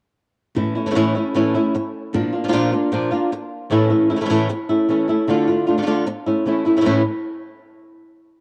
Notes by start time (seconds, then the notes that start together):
0.55 A2 E3 A3 C#4 E4, muted nylon-string guitar stroke
0.75 A3 C#4 E4
0.86 E3 A3 C#4 E4
0.91 E3 A3 C#4 E4
0.95 A2 E3 A3 C#4 E4
1.15 A3 C#4 E4
1.34 A2 E3 A3 C#4 E4, muted nylon-string guitar stroke
1.55 A3 C#4 E4
1.75 muted nylon-string guitar stroke
2.13 A#2 F3 A#3 D4 F4, muted nylon-string guitar stroke
2.33 A#3 D4 F4
2.44 F3 A#3 D4 F4
2.48 F3 A#3 D4 F4
2.53 A#2 F3 A#3 D4 F4
2.72 A#3 D4 F4
2.92 A#2 F3 A#3 D4 F4, muted nylon-string guitar stroke
3.12 A#3 D4 F4
3.32 muted nylon-string guitar stroke
3.71 A2 E3 A3 C#4 E4
3.90 A3 C#4 E4
4.10 A3 C#4 E4
4.16 E3 A3 C#4 E4
4.21 E3 A3 C#4 E4
4.25 E3 A3 C#4 E4
4.30 A2 E3 A3 C#4 E4
4.49 muted nylon-string guitar stroke
4.69 A3 C#4 E4
4.89 E3 A3 C#4 E4
5.09 A3 C#4 E4
5.28 D3 A3 D4 F4
5.47 A3 D4 F4
5.67 A3 D4 F4
5.78 D3 A3 D4 F4
5.82 D3 A3 D4 F4
5.87 D3 A3 D4 F4
6.07 muted nylon-string guitar stroke
6.26 A3 C#4 E4
6.46 E3 A3 C#4 E4
6.66 A3 C#4 E4
6.77 E3 A3 C#4 E4
6.81 E3 A3 C#4 E4
6.85 A2 E3 A3 C#4 E4